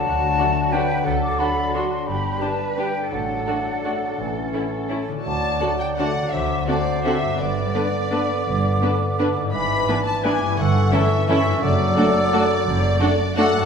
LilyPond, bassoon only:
\new Staff \with { instrumentName = "Bassoon" } { \clef bass \time 3/4 \key d \major \tempo 4 = 171 fis2. | fis2. | g2 r4 | fis2. |
e2~ e8 r8 | fis2 fis4 | fis4 fis2 | d2.~ |
d2. | e2 e4 | e4 e4 e4 | fis2.~ |
fis4 r4 fis4 | }